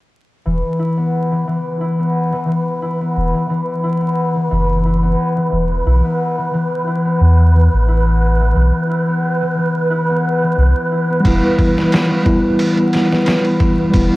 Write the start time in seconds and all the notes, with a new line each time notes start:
0.46 E1 E3 B4
0.79 E4
0.97 B3
1.31 E3
1.47 E3
1.81 E4
1.99 B3
2.33 E3
2.48 E3
2.82 E4
3.01 B3
3.17 E1
3.34 E3
3.50 E3
3.84 E4
4.01 B3
4.36 E3
4.51 F#1 E3
4.85 E4
5.03 B3
5.37 E3
5.52 E1 E3
5.86 B1 E4
6.05 B3
6.38 E3
6.53 E3
6.87 E4
7.05 B3
7.21 E2
7.39 E3
7.55 E3
7.73 A1
7.88 E4
8.06 B3
8.40 E3
8.56 B1 E3
8.89 E4
9.08 B3
9.42 E3
9.58 E3
9.91 E4
10.09 B3
10.43 E3
10.57 C2 E3
10.92 E4
11.10 B3
11.20 G3 B3
11.25 E1 E3 E4, kick, ride
11.58 E4, kick, ride
11.77 B3, snare
11.92 snare, ride
12.10 E3
12.23 E3 G3 B3 E4, kick, ride
12.59 E4, ride
12.77 B3, ride
12.93 snare, ride
13.12 E3, snare
13.26 E3, snare, ride
13.45 ride
13.60 E4, kick, ride
13.80 B3
13.90 G3 B3, kick, ride
13.95 E1 E4